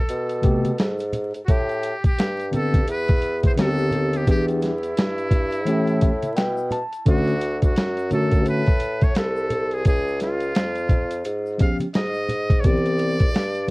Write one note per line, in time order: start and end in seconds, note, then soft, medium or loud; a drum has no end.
0.00 1.11 A4 loud
0.09 0.76 B2 loud
0.09 closed hi-hat medium
0.09 shaker medium
0.30 closed hi-hat medium
0.30 shaker soft
0.42 0.70 C3 medium
0.42 0.70 A3 medium
0.42 0.71 B3 medium
0.42 0.71 G4 medium
0.42 kick medium
0.42 closed hi-hat medium
0.42 shaker soft
0.65 closed hi-hat medium
0.65 high conga medium
0.65 shaker soft
0.78 1.32 G#2 loud
0.78 snare loud
0.78 closed hi-hat medium
0.78 shaker medium
0.99 closed hi-hat medium
0.99 shaker soft
1.13 closed hi-hat medium
1.13 low conga medium
1.13 shaker soft
1.34 1.40 G#2 soft
1.34 closed hi-hat medium
1.34 shaker soft
1.45 1.93 A2 loud
1.45 1.52 F#4 medium
1.45 kick loud
1.45 closed hi-hat medium
1.45 shaker medium
1.51 2.05 G4 medium
1.69 closed hi-hat soft
1.69 shaker soft
1.83 closed hi-hat medium
1.83 shaker soft
2.04 2.50 G4 loud
2.04 kick medium
2.04 closed hi-hat soft
2.04 shaker soft
2.18 2.85 G2 medium
2.18 snare loud
2.18 closed hi-hat medium
2.18 shaker medium
2.40 closed hi-hat soft
2.40 shaker soft
2.51 2.79 D3 medium
2.51 2.79 B3 medium
2.51 2.80 C4 soft
2.51 2.80 G4 medium
2.51 closed hi-hat medium
2.51 low conga medium
2.51 shaker soft
2.55 2.87 A4 loud
2.74 kick medium
2.74 closed hi-hat medium
2.74 shaker soft
2.87 3.54 E2 loud
2.87 3.41 B4 loud
2.87 closed hi-hat medium
2.87 shaker medium
3.08 kick medium
3.08 closed hi-hat soft
3.08 shaker soft
3.22 closed hi-hat medium
3.22 shaker soft
3.43 3.52 C5 medium
3.43 kick loud
3.43 closed hi-hat medium
3.43 high conga medium
3.43 shaker soft
3.56 4.24 D#2 loud
3.56 4.27 D3 medium
3.56 4.26 B3 medium
3.56 4.28 C4 medium
3.56 3.66 F#4 medium
3.56 snare loud
3.56 closed hi-hat medium
3.56 shaker medium
3.61 4.18 A4 loud
3.65 4.28 G4 medium
3.78 shaker soft
3.91 closed hi-hat medium
3.91 low conga medium
3.91 shaker soft
4.13 4.29 G4 medium
4.13 closed hi-hat medium
4.13 shaker soft
4.26 4.94 E2 loud
4.26 4.70 E3 medium
4.26 4.70 B3 medium
4.26 4.71 D4 medium
4.26 4.71 G4 medium
4.26 kick loud
4.26 closed hi-hat medium
4.26 shaker medium
4.31 4.46 G4 loud
4.48 closed hi-hat soft
4.48 shaker soft
4.61 6.69 E4 medium
4.61 snare soft
4.61 closed hi-hat medium
4.61 shaker soft
4.83 closed hi-hat medium
4.83 shaker soft
4.97 5.68 G2 medium
4.97 snare loud
4.97 closed hi-hat loud
4.97 shaker medium
5.18 closed hi-hat soft
5.18 shaker soft
5.31 kick medium
5.31 closed hi-hat medium
5.31 low conga medium
5.31 shaker soft
5.53 closed hi-hat medium
5.53 shaker soft
5.66 6.38 A2 loud
5.66 6.10 E3 medium
5.66 6.10 A3 medium
5.66 6.11 C#4 medium
5.66 6.11 G4 medium
5.66 closed hi-hat medium
5.66 shaker medium
5.87 closed hi-hat soft
5.87 shaker soft
6.01 6.35 E5 medium
6.01 kick medium
6.01 closed hi-hat medium
6.01 shaker soft
6.22 closed hi-hat medium
6.22 high conga medium
6.22 shaker soft
6.37 6.79 B2 loud
6.37 6.69 G5 medium
6.37 snare loud
6.37 closed hi-hat medium
6.37 shaker medium
6.57 shaker soft
6.70 7.04 A5 medium
6.70 closed hi-hat medium
6.70 low conga medium
6.70 shaker soft
6.93 closed hi-hat medium
6.93 shaker soft
7.06 7.73 D2 loud
7.06 7.33 D3 medium
7.06 7.33 A3 medium
7.06 7.33 C#4 medium
7.06 7.34 F#4 medium
7.06 7.60 F#4 medium
7.06 kick loud
7.06 closed hi-hat medium
7.06 shaker medium
7.27 closed hi-hat soft
7.27 shaker soft
7.41 closed hi-hat medium
7.41 shaker soft
7.62 8.09 F#4 medium
7.62 kick medium
7.62 closed hi-hat medium
7.62 shaker soft
7.76 8.48 F#2 medium
7.76 snare loud
7.76 closed hi-hat medium
7.76 shaker medium
7.97 closed hi-hat soft
7.97 shaker soft
8.10 8.62 D3 medium
8.10 8.63 A3 medium
8.10 8.63 C#4 medium
8.10 8.64 F#4 medium
8.10 8.44 A4 medium
8.10 closed hi-hat medium
8.10 low conga medium
8.10 shaker soft
8.31 kick medium
8.31 closed hi-hat medium
8.31 shaker soft
8.46 9.12 A2 medium
8.46 9.05 B4 loud
8.46 closed hi-hat medium
8.46 shaker medium
8.66 kick loud
8.66 closed hi-hat soft
8.66 shaker soft
8.80 closed hi-hat medium
8.80 shaker soft
9.01 9.19 C#5 medium
9.01 kick loud
9.01 closed hi-hat soft
9.01 high conga medium
9.01 shaker soft
9.15 9.82 C2 medium
9.15 9.75 A4 medium
9.15 snare medium
9.15 closed hi-hat medium
9.15 shaker medium
9.36 shaker soft
9.50 closed hi-hat medium
9.50 low conga medium
9.50 shaker soft
9.71 9.87 G#4 medium
9.71 closed hi-hat medium
9.71 shaker soft
9.85 10.52 C#2 loud
9.85 10.19 G#4 medium
9.85 kick loud
9.85 closed hi-hat medium
9.85 shaker medium
10.08 shaker soft
10.20 11.32 F4 medium
10.20 snare soft
10.20 closed hi-hat medium
10.20 shaker soft
10.41 closed hi-hat soft
10.41 shaker soft
10.55 11.22 F2 medium
10.55 snare loud
10.55 closed hi-hat medium
10.55 shaker medium
10.76 closed hi-hat soft
10.76 shaker soft
10.89 kick medium
10.89 closed hi-hat medium
10.89 low conga medium
10.89 shaker soft
11.11 closed hi-hat medium
11.11 shaker soft
11.25 11.67 G#2 loud
11.25 closed hi-hat medium
11.25 shaker medium
11.46 shaker soft
11.58 11.86 F3 medium
11.58 11.86 B3 soft
11.58 11.86 C#4 medium
11.58 11.87 G4 medium
11.58 11.77 F5 medium
11.58 kick medium
11.58 closed hi-hat medium
11.58 shaker soft
11.80 closed hi-hat medium
11.80 high conga medium
11.80 shaker soft
11.94 12.62 G#2 medium
11.94 12.62 D#5 loud
11.94 snare medium
11.94 closed hi-hat medium
11.94 shaker medium
12.14 shaker soft
12.29 closed hi-hat medium
12.29 low conga medium
12.29 shaker soft
12.50 kick loud
12.50 closed hi-hat soft
12.50 shaker soft
12.60 12.72 D3 soft
12.60 12.67 C#5 medium
12.60 closed hi-hat medium
12.64 13.36 C2 loud
12.64 13.16 B3 medium
12.64 13.17 C4 medium
12.64 13.17 G4 medium
12.64 13.69 D5 loud
12.64 kick loud
12.64 shaker medium
12.70 13.19 E3 medium
12.86 closed hi-hat soft
12.86 shaker soft
12.98 closed hi-hat medium
12.98 shaker soft
13.19 kick medium
13.19 closed hi-hat medium
13.19 shaker soft
13.34 13.71 G2 loud
13.34 snare loud
13.34 closed hi-hat medium
13.34 shaker medium
13.55 closed hi-hat soft
13.55 shaker soft